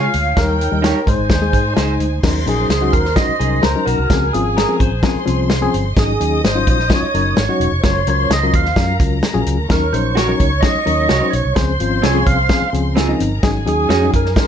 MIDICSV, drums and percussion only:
0, 0, Header, 1, 2, 480
1, 0, Start_track
1, 0, Tempo, 466563
1, 380, Time_signature, 4, 2, 24, 8
1, 14889, End_track
2, 0, Start_track
2, 0, Title_t, "Drums"
2, 139, Note_on_c, 9, 42, 80
2, 242, Note_off_c, 9, 42, 0
2, 377, Note_on_c, 9, 42, 85
2, 378, Note_on_c, 9, 38, 95
2, 379, Note_on_c, 9, 36, 110
2, 480, Note_off_c, 9, 42, 0
2, 481, Note_off_c, 9, 38, 0
2, 482, Note_off_c, 9, 36, 0
2, 628, Note_on_c, 9, 42, 73
2, 731, Note_off_c, 9, 42, 0
2, 863, Note_on_c, 9, 42, 101
2, 864, Note_on_c, 9, 38, 99
2, 966, Note_off_c, 9, 42, 0
2, 967, Note_off_c, 9, 38, 0
2, 1102, Note_on_c, 9, 36, 90
2, 1108, Note_on_c, 9, 42, 82
2, 1205, Note_off_c, 9, 36, 0
2, 1211, Note_off_c, 9, 42, 0
2, 1333, Note_on_c, 9, 36, 88
2, 1335, Note_on_c, 9, 38, 127
2, 1339, Note_on_c, 9, 42, 72
2, 1436, Note_off_c, 9, 36, 0
2, 1438, Note_off_c, 9, 38, 0
2, 1442, Note_off_c, 9, 42, 0
2, 1578, Note_on_c, 9, 36, 97
2, 1586, Note_on_c, 9, 42, 79
2, 1681, Note_off_c, 9, 36, 0
2, 1689, Note_off_c, 9, 42, 0
2, 1817, Note_on_c, 9, 38, 106
2, 1825, Note_on_c, 9, 42, 87
2, 1920, Note_off_c, 9, 38, 0
2, 1928, Note_off_c, 9, 42, 0
2, 2059, Note_on_c, 9, 42, 74
2, 2161, Note_off_c, 9, 42, 0
2, 2298, Note_on_c, 9, 36, 101
2, 2300, Note_on_c, 9, 38, 102
2, 2300, Note_on_c, 9, 49, 102
2, 2401, Note_off_c, 9, 36, 0
2, 2403, Note_off_c, 9, 38, 0
2, 2403, Note_off_c, 9, 49, 0
2, 2542, Note_on_c, 9, 42, 69
2, 2645, Note_off_c, 9, 42, 0
2, 2778, Note_on_c, 9, 42, 100
2, 2779, Note_on_c, 9, 38, 96
2, 2881, Note_off_c, 9, 42, 0
2, 2882, Note_off_c, 9, 38, 0
2, 3018, Note_on_c, 9, 36, 100
2, 3020, Note_on_c, 9, 42, 87
2, 3121, Note_off_c, 9, 36, 0
2, 3123, Note_off_c, 9, 42, 0
2, 3140, Note_on_c, 9, 38, 39
2, 3243, Note_off_c, 9, 38, 0
2, 3252, Note_on_c, 9, 36, 94
2, 3254, Note_on_c, 9, 38, 110
2, 3258, Note_on_c, 9, 42, 89
2, 3355, Note_off_c, 9, 36, 0
2, 3357, Note_off_c, 9, 38, 0
2, 3360, Note_off_c, 9, 42, 0
2, 3504, Note_on_c, 9, 42, 77
2, 3607, Note_off_c, 9, 42, 0
2, 3734, Note_on_c, 9, 38, 107
2, 3742, Note_on_c, 9, 42, 79
2, 3837, Note_off_c, 9, 38, 0
2, 3844, Note_off_c, 9, 42, 0
2, 3983, Note_on_c, 9, 42, 78
2, 4086, Note_off_c, 9, 42, 0
2, 4218, Note_on_c, 9, 36, 102
2, 4220, Note_on_c, 9, 42, 85
2, 4221, Note_on_c, 9, 38, 104
2, 4320, Note_off_c, 9, 36, 0
2, 4323, Note_off_c, 9, 42, 0
2, 4324, Note_off_c, 9, 38, 0
2, 4467, Note_on_c, 9, 42, 80
2, 4570, Note_off_c, 9, 42, 0
2, 4709, Note_on_c, 9, 42, 96
2, 4710, Note_on_c, 9, 38, 105
2, 4812, Note_off_c, 9, 42, 0
2, 4813, Note_off_c, 9, 38, 0
2, 4940, Note_on_c, 9, 36, 95
2, 4946, Note_on_c, 9, 42, 85
2, 5043, Note_off_c, 9, 36, 0
2, 5049, Note_off_c, 9, 42, 0
2, 5173, Note_on_c, 9, 36, 90
2, 5179, Note_on_c, 9, 38, 115
2, 5183, Note_on_c, 9, 42, 81
2, 5276, Note_off_c, 9, 36, 0
2, 5282, Note_off_c, 9, 38, 0
2, 5286, Note_off_c, 9, 42, 0
2, 5424, Note_on_c, 9, 42, 81
2, 5527, Note_off_c, 9, 42, 0
2, 5656, Note_on_c, 9, 38, 101
2, 5664, Note_on_c, 9, 42, 77
2, 5759, Note_off_c, 9, 38, 0
2, 5767, Note_off_c, 9, 42, 0
2, 5905, Note_on_c, 9, 42, 76
2, 6008, Note_off_c, 9, 42, 0
2, 6138, Note_on_c, 9, 36, 108
2, 6139, Note_on_c, 9, 42, 93
2, 6140, Note_on_c, 9, 38, 98
2, 6241, Note_off_c, 9, 36, 0
2, 6242, Note_off_c, 9, 42, 0
2, 6243, Note_off_c, 9, 38, 0
2, 6385, Note_on_c, 9, 42, 83
2, 6488, Note_off_c, 9, 42, 0
2, 6630, Note_on_c, 9, 42, 101
2, 6631, Note_on_c, 9, 38, 116
2, 6733, Note_off_c, 9, 42, 0
2, 6734, Note_off_c, 9, 38, 0
2, 6864, Note_on_c, 9, 36, 95
2, 6866, Note_on_c, 9, 42, 82
2, 6967, Note_off_c, 9, 36, 0
2, 6969, Note_off_c, 9, 42, 0
2, 6986, Note_on_c, 9, 38, 38
2, 7089, Note_off_c, 9, 38, 0
2, 7096, Note_on_c, 9, 36, 89
2, 7100, Note_on_c, 9, 38, 124
2, 7103, Note_on_c, 9, 42, 77
2, 7199, Note_off_c, 9, 36, 0
2, 7202, Note_off_c, 9, 38, 0
2, 7206, Note_off_c, 9, 42, 0
2, 7351, Note_on_c, 9, 42, 79
2, 7454, Note_off_c, 9, 42, 0
2, 7580, Note_on_c, 9, 38, 120
2, 7588, Note_on_c, 9, 42, 82
2, 7683, Note_off_c, 9, 38, 0
2, 7691, Note_off_c, 9, 42, 0
2, 7827, Note_on_c, 9, 42, 76
2, 7930, Note_off_c, 9, 42, 0
2, 8060, Note_on_c, 9, 42, 85
2, 8061, Note_on_c, 9, 38, 108
2, 8063, Note_on_c, 9, 36, 103
2, 8163, Note_off_c, 9, 42, 0
2, 8164, Note_off_c, 9, 38, 0
2, 8165, Note_off_c, 9, 36, 0
2, 8300, Note_on_c, 9, 42, 74
2, 8403, Note_off_c, 9, 42, 0
2, 8545, Note_on_c, 9, 42, 97
2, 8546, Note_on_c, 9, 38, 114
2, 8648, Note_off_c, 9, 42, 0
2, 8649, Note_off_c, 9, 38, 0
2, 8781, Note_on_c, 9, 42, 83
2, 8783, Note_on_c, 9, 36, 100
2, 8884, Note_off_c, 9, 42, 0
2, 8886, Note_off_c, 9, 36, 0
2, 8901, Note_on_c, 9, 38, 39
2, 9004, Note_off_c, 9, 38, 0
2, 9015, Note_on_c, 9, 36, 93
2, 9016, Note_on_c, 9, 38, 113
2, 9020, Note_on_c, 9, 42, 88
2, 9118, Note_off_c, 9, 36, 0
2, 9119, Note_off_c, 9, 38, 0
2, 9123, Note_off_c, 9, 42, 0
2, 9257, Note_on_c, 9, 36, 110
2, 9264, Note_on_c, 9, 42, 82
2, 9360, Note_off_c, 9, 36, 0
2, 9367, Note_off_c, 9, 42, 0
2, 9494, Note_on_c, 9, 38, 102
2, 9501, Note_on_c, 9, 42, 80
2, 9597, Note_off_c, 9, 38, 0
2, 9604, Note_off_c, 9, 42, 0
2, 9737, Note_on_c, 9, 42, 85
2, 9840, Note_off_c, 9, 42, 0
2, 9977, Note_on_c, 9, 42, 85
2, 9978, Note_on_c, 9, 38, 108
2, 9979, Note_on_c, 9, 36, 102
2, 10080, Note_off_c, 9, 42, 0
2, 10081, Note_off_c, 9, 36, 0
2, 10081, Note_off_c, 9, 38, 0
2, 10223, Note_on_c, 9, 42, 76
2, 10326, Note_off_c, 9, 42, 0
2, 10462, Note_on_c, 9, 42, 107
2, 10464, Note_on_c, 9, 38, 98
2, 10565, Note_off_c, 9, 42, 0
2, 10566, Note_off_c, 9, 38, 0
2, 10699, Note_on_c, 9, 36, 90
2, 10701, Note_on_c, 9, 42, 86
2, 10802, Note_off_c, 9, 36, 0
2, 10804, Note_off_c, 9, 42, 0
2, 10932, Note_on_c, 9, 36, 93
2, 10933, Note_on_c, 9, 38, 127
2, 10936, Note_on_c, 9, 42, 81
2, 11035, Note_off_c, 9, 36, 0
2, 11036, Note_off_c, 9, 38, 0
2, 11039, Note_off_c, 9, 42, 0
2, 11180, Note_on_c, 9, 42, 75
2, 11283, Note_off_c, 9, 42, 0
2, 11411, Note_on_c, 9, 38, 104
2, 11419, Note_on_c, 9, 42, 83
2, 11514, Note_off_c, 9, 38, 0
2, 11522, Note_off_c, 9, 42, 0
2, 11657, Note_on_c, 9, 42, 71
2, 11760, Note_off_c, 9, 42, 0
2, 11893, Note_on_c, 9, 42, 87
2, 11894, Note_on_c, 9, 38, 103
2, 11897, Note_on_c, 9, 36, 107
2, 11996, Note_off_c, 9, 42, 0
2, 11997, Note_off_c, 9, 38, 0
2, 12000, Note_off_c, 9, 36, 0
2, 12139, Note_on_c, 9, 42, 78
2, 12241, Note_off_c, 9, 42, 0
2, 12380, Note_on_c, 9, 42, 96
2, 12381, Note_on_c, 9, 38, 98
2, 12483, Note_off_c, 9, 42, 0
2, 12484, Note_off_c, 9, 38, 0
2, 12620, Note_on_c, 9, 36, 105
2, 12622, Note_on_c, 9, 42, 87
2, 12722, Note_off_c, 9, 36, 0
2, 12725, Note_off_c, 9, 42, 0
2, 12853, Note_on_c, 9, 36, 92
2, 12855, Note_on_c, 9, 38, 116
2, 12859, Note_on_c, 9, 42, 81
2, 12956, Note_off_c, 9, 36, 0
2, 12958, Note_off_c, 9, 38, 0
2, 12962, Note_off_c, 9, 42, 0
2, 13109, Note_on_c, 9, 42, 74
2, 13212, Note_off_c, 9, 42, 0
2, 13340, Note_on_c, 9, 38, 105
2, 13348, Note_on_c, 9, 42, 78
2, 13443, Note_off_c, 9, 38, 0
2, 13451, Note_off_c, 9, 42, 0
2, 13581, Note_on_c, 9, 42, 81
2, 13684, Note_off_c, 9, 42, 0
2, 13816, Note_on_c, 9, 42, 93
2, 13818, Note_on_c, 9, 36, 117
2, 13818, Note_on_c, 9, 38, 107
2, 13919, Note_off_c, 9, 42, 0
2, 13920, Note_off_c, 9, 38, 0
2, 13921, Note_off_c, 9, 36, 0
2, 14065, Note_on_c, 9, 42, 77
2, 14168, Note_off_c, 9, 42, 0
2, 14301, Note_on_c, 9, 42, 94
2, 14302, Note_on_c, 9, 38, 109
2, 14404, Note_off_c, 9, 42, 0
2, 14405, Note_off_c, 9, 38, 0
2, 14543, Note_on_c, 9, 36, 92
2, 14546, Note_on_c, 9, 42, 85
2, 14646, Note_off_c, 9, 36, 0
2, 14649, Note_off_c, 9, 42, 0
2, 14665, Note_on_c, 9, 38, 41
2, 14768, Note_off_c, 9, 38, 0
2, 14775, Note_on_c, 9, 36, 90
2, 14779, Note_on_c, 9, 38, 119
2, 14782, Note_on_c, 9, 42, 80
2, 14878, Note_off_c, 9, 36, 0
2, 14882, Note_off_c, 9, 38, 0
2, 14885, Note_off_c, 9, 42, 0
2, 14889, End_track
0, 0, End_of_file